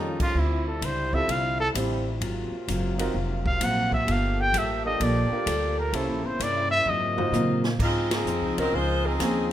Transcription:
Already playing: F2 C#3 D#3 F3 G3 C#4 D#4 F4 G4 A4
0.20 F4, kick, crash
0.35 D2 C3 D3 G3 C4 E4 F4, kick
0.39 E4
0.68 A4
0.82 C#2 D3 G3 C4 F4 C5, kick, hi-hat pedal, ride
1.13 C4 E4 F4 G4 A4 E5, kick
1.28 C2 D3 G3 C4 F4 F5, kick, ride
1.60 A4
1.74 A1 D3 G3 C4 E4 F4 G4 C5, kick, hi-hat pedal, ride
2.21 G#1 G#2 C3 F#3 A#3 C4 F4, kick, ride
2.51 muted upright bass stroke
2.68 F#1 G#2 F#3 C4 F4, kick, hi-hat pedal, ride
2.98 C4 D#4 F4 F#4 A#4, ride
3.14 F1 G#2 F#3 C4 F4, kick
3.46 F5, kick
3.61 A#1 G#2 F#3 C4 F4 F#5, kick, hi-hat pedal, ride
3.92 E5, kick
4.06 G1 F3 G3 A#3 F4 G4 A4, kick, ride
4.12 F5
4.40 G5
4.53 A1 G3 A#3 F4 A4, kick, hi-hat pedal, ride
4.58 E5
4.85 A#3 D4 F4 G4 A4 D#5
5.00 A#1 G3 A#3 F4 A4 D5, kick, ride
5.31 A#3 D4 F4 G4 A#4, muted upright bass stroke
5.46 D2 G3 A#3 F4 A4, kick, hi-hat pedal, ride
5.79 A#4
5.93 C2 C3 C#3 A#3 C4 C#4 E4 G4 A4 C5, kick, ride
6.08 A#1
6.24 G1 C5
6.39 G2 C3 A#3 C#4 E4 D5, kick, hi-hat pedal, ride
6.71 E5
6.86 G#2 C3 F#3 A#3 C4 F4 D#5, floor tom
7.17 A#3 D#4 F4 F#4 C5, floor tom
7.32 G#2 A#2 F#3 C4 F4, hi-hat pedal, mid tom
7.64 snare
7.79 G#2 C#3 F3 G#3 C4 D#4 F4, kick, crash
8.11 F3 C4 D#4 G#4, snare, ride
8.25 F2 C#3 F3 C4 D#4, hi-hat pedal
8.41 C#2
8.57 C2 F#3 C4 C#4 D#4 F4 G#4 A#4 C5, ride
8.73 C#2 C#3 F3 G#3 C4 D#4 F4 C5, kick
9.05 F3 C4 D#4 G#4
9.19 D#2 C#3 F3 C4 C#4 D#4 F4 G#4 C5, kick, snare, hi-hat pedal, ride

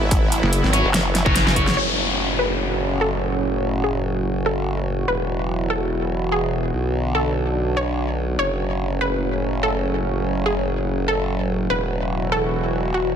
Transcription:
Already playing: G#1 F#3 B3 E4
0.11 kick, closed hi-hat
0.32 closed hi-hat
0.43 F#1
0.53 closed hi-hat
0.64 G#1, snare
0.73 C#4 F#4 C#5, closed hi-hat
0.84 F#1
0.94 snare, closed hi-hat
1.15 snare, closed hi-hat
1.26 F#1 C#4 F#4 C#5, kick
1.36 snare, closed hi-hat
1.47 F#1, snare
1.56 C#4 F#4 C#5, kick, closed hi-hat
1.67 snare
1.77 F#1 A2 C#3 F#3 C#4 F#4 C#5, downlifter
2.39 B4
3.01 A4
3.84 G#4
4.46 A4
5.08 E1 B2 E3 F#3 E4 B4
5.70 A4
6.32 G#4
6.73 B1 D3 F#3 D4
7.15 A4
7.77 C#5
8.39 F#1 A2 C#3 C#4 C#5
9.01 B4
9.63 A4
10.46 G#4
11.08 A4
11.70 E1 B2 E3 E4 F#4 B4
12.32 A4
12.94 F#4

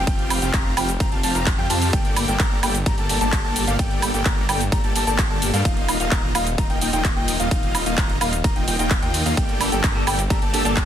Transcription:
0.07 F1 F4 G4 G5, kick, closed hi-hat, ride, cabasa
0.19 closed hi-hat
0.30 open hi-hat, cabasa, high woodblock
0.42 F1 C4 F4 G4 F5 G5, closed hi-hat, cabasa
0.53 F1 C4 F4 A#5, kick, clap, closed hi-hat, ride, cabasa
0.77 F1 C4 F4 G4 F5 G5, open hi-hat, cabasa, high woodblock
0.89 closed hi-hat, cabasa
1.00 F1 C4 F4 G4 F5 A#5, kick, closed hi-hat, ride, cabasa
1.12 F1 C4 F4 G4 F5 A5, closed hi-hat
1.23 F1 C4 F4 G4 F5 A5, open hi-hat, cabasa
1.35 F1 C4 F4 G4 F5 A#5, closed hi-hat, cabasa
1.46 kick, clap, closed hi-hat, ride, cabasa
1.58 F2 C4 F4 G4 F5 G5
1.70 F2 C4 F4 G4 F5 A5, open hi-hat, cabasa
1.82 open hi-hat, cabasa
1.93 G1 A#3 A4 G5, kick, closed hi-hat, ride, cabasa
2.05 closed hi-hat
2.16 open hi-hat, cabasa, high woodblock
2.28 G1 A#3 G4 A4 D5 G5, closed hi-hat, cabasa
2.39 G1 A#3 G4 A#5, kick, clap, closed hi-hat, ride, cabasa
2.63 G1 A#3 G4 A4 D5 G5, open hi-hat, cabasa, high woodblock
2.75 closed hi-hat, cabasa
2.86 G1 A#3 G4 A4 D5 A#5, kick, closed hi-hat, ride, cabasa
2.98 G1 A#3 G4 A4 D5 A5, closed hi-hat
3.09 G1 A#3 G4 A4 D5 A5, open hi-hat, cabasa
3.21 G1 A#3 G4 A4 D5 A5, closed hi-hat, cabasa
3.32 kick, clap, closed hi-hat, ride, cabasa
3.44 G1 A#3 G4 A4 D5 A5
3.56 open hi-hat, cabasa
3.67 G1 A#3 G4 A4 D5 F5, closed hi-hat, cabasa
3.79 G1 G5, kick, closed hi-hat, ride, cabasa
3.91 closed hi-hat
4.02 open hi-hat, cabasa, high woodblock
4.14 G1 A#3 G4 A4 D5 G5, closed hi-hat, cabasa
4.25 G1 D5 A#5, kick, clap, closed hi-hat, ride, cabasa
4.49 G1 A#3 G4 A4 D5 G5, open hi-hat, cabasa, high woodblock
4.61 closed hi-hat, cabasa
4.72 G1 A#3 G4 A4 D5 A#5, kick, closed hi-hat, ride, cabasa
4.84 G1 A#3 G4 A4 D5 A5, closed hi-hat
4.95 G1 A#3 G4 A4 D5 A5, open hi-hat, cabasa
5.07 G1 A#3 G4 A4 D5 A5, closed hi-hat, cabasa
5.18 kick, clap, closed hi-hat, ride, cabasa
5.30 G1 A#3 G4 A4 D5 A5
5.42 open hi-hat, cabasa
5.54 G2 A#3 G4 A4 D5 F5, open hi-hat, cabasa
5.65 D#1 D#4 F4 F5, kick, closed hi-hat, ride, cabasa
5.77 closed hi-hat
5.88 open hi-hat, cabasa, high woodblock
6.00 D#1 A#3 D#4 F4 D#5 F5, closed hi-hat, cabasa
6.11 D#1 A#3 F4 A#5, kick, clap, closed hi-hat, ride, cabasa
6.35 D#1 A#3 D#4 F4 D#5 F5, open hi-hat, cabasa, high woodblock
6.47 closed hi-hat, cabasa
6.58 D#1 A#3 D#4 F4 D#5 A#5, kick, closed hi-hat, ride, cabasa
6.70 D#1 A#3 D#4 F4 D#5 G5, closed hi-hat
6.81 D#1 A#3 D#4 F4 D#5 G5, open hi-hat, cabasa
6.93 D#1 A#3 D#4 F4 D#5 G5, closed hi-hat, cabasa
7.04 kick, clap, closed hi-hat, ride, cabasa
7.16 D#1 A#3 D#4 F4 D#5 G5
7.28 open hi-hat, cabasa
7.40 D#1 A#3 D#4 F4 D#5 F5, closed hi-hat, cabasa
7.51 D#1, kick, closed hi-hat, ride, cabasa
7.63 closed hi-hat
7.75 open hi-hat, cabasa, high woodblock
7.86 D#1 A#3 D#4 F4 D#5 F5, closed hi-hat, cabasa
7.98 D#1 A#5, kick, clap, closed hi-hat, ride, cabasa
8.09 closed hi-hat
8.21 D#1 A#3 D#4 F4 D#5 F5, open hi-hat, cabasa, high woodblock
8.33 closed hi-hat, cabasa
8.44 D#1 A#3 D#4 F4 D#5 A#5, kick, closed hi-hat, ride, cabasa
8.56 D#1 A#3 D#4 F4 D#5 G5, closed hi-hat
8.68 D#1 A#3 D#4 F4 D#5 G5, open hi-hat, cabasa
8.79 D#1 A#3 D#4 F4 D#5 G5, closed hi-hat, cabasa
8.91 kick, clap, closed hi-hat, ride, cabasa
9.02 D#2 A#3 D#4 F4 D#5 G5, closed hi-hat
9.14 open hi-hat, cabasa
9.26 D#2 A#3 D#4 F4 D#5 F5, open hi-hat, cabasa
9.37 G1 A#3 G4 D5 G5, kick, closed hi-hat, ride, cabasa
9.49 closed hi-hat
9.60 A#3 D4 G4 A4, open hi-hat, cabasa, high woodblock
9.72 G1 A#3 G4 A4 D5 G5, closed hi-hat, cabasa
9.84 G1, kick, clap, closed hi-hat, ride, cabasa
9.95 A#3 D4 G4 A4
10.07 G1 A#3 G4 A4 D5 G5, open hi-hat, cabasa, high woodblock
10.19 closed hi-hat, cabasa
10.30 G1 A#3 D4 G4 A4 D5 A#5, kick, closed hi-hat, ride, cabasa
10.42 G1 A#3 G4 A4 D5 A5, closed hi-hat
10.53 G1 A#3 D4 G4 A4 D5 A5, open hi-hat, cabasa
10.65 G1 A#3 D4 G4 A4 D5 A5, closed hi-hat, cabasa
10.77 kick, clap, closed hi-hat, ride, cabasa

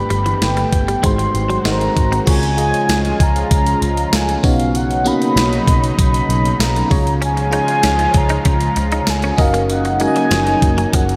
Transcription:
Already playing: G2 D3 A3 B3 D4 G4 B4 B5
0.10 G1 G3, closed hi-hat
0.26 E3, closed hi-hat
0.42 G1 G5, snare, closed hi-hat
0.57 G3, closed hi-hat
0.72 G1, muted clean electric guitar stroke, kick, closed hi-hat
0.88 G3, closed hi-hat
1.02 G#1 G#2 D#3 G#3 C4 D#4 F#4 C5 C6, kick, closed hi-hat
1.18 muted clean electric guitar stroke, closed hi-hat
1.34 G#1, closed hi-hat
1.50 F#3, closed hi-hat
1.64 G#1 G#3 D#4 F#4 A#4 A#5, snare, closed hi-hat
1.72 C5
1.81 muted clean electric guitar stroke, closed hi-hat
1.97 G#1, kick, closed hi-hat
2.12 C4, closed hi-hat
2.26 C#2 C#3 F3 G#3 F4 G#4 C#5 G#5, kick, closed hi-hat, crash
2.43 closed hi-hat
2.57 F4 G#4 D#5 G#5, closed hi-hat
2.74 closed hi-hat
2.89 C#2, snare, closed hi-hat, tambourine
3.05 closed hi-hat
3.20 C#2 A#5, kick, closed hi-hat
3.36 closed hi-hat
3.51 C#2, kick, closed hi-hat
3.66 closed hi-hat
3.82 C#2, closed hi-hat
3.97 closed hi-hat
4.13 C#2 G#5, snare, closed hi-hat, tambourine
4.29 closed hi-hat
4.43 B1 B2 C#3 F#3 B3 C#4 D#4 F#4 C#5 F5, kick, open hi-hat
4.60 closed hi-hat
4.75 F#5, closed hi-hat
4.91 closed hi-hat
5.04 A#3 B3 C#4 D#4 F#4 B5, closed hi-hat
5.22 closed hi-hat
5.36 B1, snare, closed hi-hat, tambourine
5.53 closed hi-hat
5.68 B1, kick, closed hi-hat
5.84 closed hi-hat
5.99 B1 B5, kick, closed hi-hat
6.14 closed hi-hat
6.29 B1, closed hi-hat
6.45 closed hi-hat
6.60 B1 A#5, snare, closed hi-hat, tambourine
6.76 closed hi-hat
6.90 C#2 C#3 F3 G#3 F4 G#4 C#5, kick, open hi-hat
7.07 closed hi-hat
7.22 C#4 G#5, closed hi-hat
7.37 muted clean electric guitar stroke, closed hi-hat
7.51 D#4 F4 G#4 C#5, closed hi-hat
7.55 G#5
7.68 closed hi-hat
7.83 C#2 C#4, snare, closed hi-hat, tambourine
7.99 muted clean electric guitar stroke, closed hi-hat
8.14 C#2 A#5, kick, closed hi-hat
8.29 D#4, closed hi-hat
8.45 C#2 C#4, kick, closed hi-hat
8.61 closed hi-hat
8.76 C#2, muted clean electric guitar stroke, closed hi-hat
8.92 D#4, closed hi-hat
9.07 C#2 G#5, snare, closed hi-hat, tambourine
9.22 C#4, closed hi-hat
9.37 F#1 C#3 F#3 A#3 C#4 D#4 F#4 A#4 D#5 F5, muted clean electric guitar stroke, kick, open hi-hat
9.54 A#3, closed hi-hat
9.70 F#5, closed hi-hat
9.85 muted clean electric guitar stroke, closed hi-hat
10.00 G#3 C#4 D#4 F#4 A#4 C#5 G#5, closed hi-hat
10.07 D#5
10.16 F#3, closed hi-hat
10.31 F#1 F3, snare, closed hi-hat, tambourine
10.47 muted clean electric guitar stroke, closed hi-hat
10.62 F#1, kick, closed hi-hat
10.78 F#3, closed hi-hat
10.93 F#1 F3 F#5, kick, closed hi-hat
11.09 closed hi-hat

